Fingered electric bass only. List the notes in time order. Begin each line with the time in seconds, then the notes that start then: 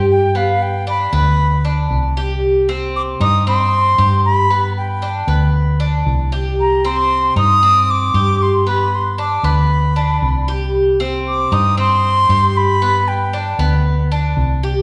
Already playing: G2
1.13 D2
1.90 C2
3.20 G2
3.98 G2
5.27 D2
6.06 C2
7.36 G2
8.14 G2
9.43 D2
10.22 C2
11.52 G2
12.29 G2
13.59 D2
14.37 C2